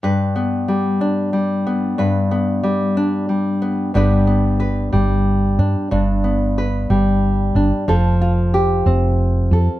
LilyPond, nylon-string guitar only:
\new Staff \with { instrumentName = "Nylon-string guitar" } { \time 6/8 \key g \mixolydian \tempo 4. = 61 << { b'8 b4 d'4 b8 | b'8 b4 d'4 b8 | <g b d' b'>8 b8 b'4. d'8 | d'8 b8 b'4. d'8 |
a'8 f'8 g'4. a'8 | } \\ { g,4 g4 g4 | g,4 g4 g4 | g,4. g4. | g,4. g4. |
f4. c'4. | } >> }